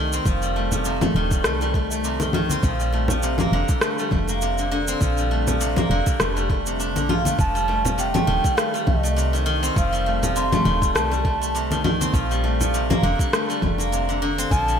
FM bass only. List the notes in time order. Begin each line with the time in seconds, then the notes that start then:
Already playing: C2
0.25 F1
1.14 D#1
1.44 C2
2.63 A#1
3.52 F1
4.12 F1
5.01 A#1
5.90 F1
6.20 F1
6.96 A#1
7.39 F1
8.27 D#1
8.87 C2
9.76 F1
10.65 D#1
10.94 C2
12.13 A#1
13.03 F1
13.62 F1
14.51 A#1